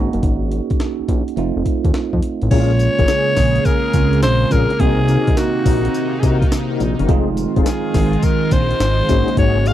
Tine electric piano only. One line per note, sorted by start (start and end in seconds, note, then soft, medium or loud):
0.00 1.34 A#3 medium
0.00 1.35 C#4 medium
0.00 1.35 D#4 medium
0.00 1.35 F#4 medium
0.00 0.12 G#4 medium
1.36 2.49 A3 medium
1.36 2.49 C4 medium
1.36 2.50 D#4 medium
1.36 2.50 F4 medium
2.51 3.91 G#3 medium
2.51 3.91 A#3 medium
2.51 3.92 C#4 medium
2.51 2.61 E4 medium
2.60 3.93 F4 medium
3.94 4.80 G#3 soft
3.94 4.79 C4 soft
3.94 4.80 C#4 soft
3.94 4.80 F4 medium
4.80 7.04 A#3 medium
4.80 7.05 C4 medium
4.80 7.05 D#4 medium
4.80 7.06 F#4 medium
7.08 9.04 G#3 medium
7.08 9.05 C4 medium
7.08 9.05 D#4 medium
7.08 9.05 F4 medium
9.08 9.73 A#3 medium
9.08 9.73 C#4 medium
9.08 9.73 D#4 medium
9.08 9.73 F#4 medium